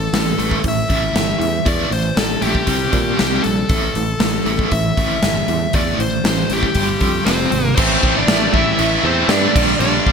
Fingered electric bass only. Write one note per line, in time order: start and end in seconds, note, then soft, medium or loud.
0.13 0.32 A1 medium
0.39 0.57 A1 medium
0.65 0.83 A1 medium
0.90 1.08 A1 medium
1.13 1.32 G1 medium
1.40 1.58 E2 medium
1.66 1.84 E2 loud
1.91 2.10 A1 medium
2.17 2.35 A1 medium
2.42 2.61 A#1 medium
2.68 2.86 C2 medium
2.93 3.11 A#2 loud
3.20 3.38 C2 medium
3.46 3.63 A#1 medium
3.70 3.88 A1 medium
3.96 4.14 A1 medium
4.20 4.39 A1 medium
4.45 4.64 A1 medium
4.72 4.90 A1 medium
4.97 5.16 A1 medium
5.22 5.41 G1 medium
5.48 5.67 E2 medium
5.75 5.93 E2 medium
5.99 6.17 A1 medium
6.24 6.43 A1 medium
6.50 6.69 A1 medium
6.75 6.94 G1 medium
7.01 7.19 F2 medium
7.26 7.45 F1 medium
7.52 7.70 G#1 medium
7.78 7.96 A1 loud
8.03 8.21 A1 medium
8.28 8.46 A1 medium
8.53 8.72 A1 medium
8.79 8.97 A1 medium
9.04 9.22 E2 loud
9.28 9.47 G2 medium
9.55 9.74 A#1 medium
9.80 9.99 A#1 loud
10.06 10.12 A#1 medium